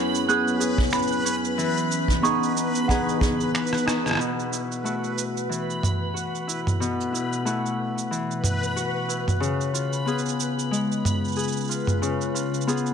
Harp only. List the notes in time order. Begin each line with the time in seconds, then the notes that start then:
Already playing: F#2 B3 C#4 F#4 G#4
0.28 B3 C#4 G#4
0.60 G#4
1.25 C#4
1.58 E3
2.22 B3 D#4 G#4
2.56 D#4
2.89 B3 D#4 G#4
3.21 G#4
3.86 D#4
4.19 B2
4.51 E4
4.84 A3 E4 F#4
5.49 E3
6.14 F#4
6.47 E4
6.80 B2
7.12 E4
7.45 A3 E4 F#4
8.11 E3
8.76 F#4
9.08 E4
9.40 C#3
9.74 F4
10.06 B3 F4 G#4
10.71 G#3
11.37 G#4
11.69 F4
12.02 C#3
12.34 F4
12.67 B3 F4 G#4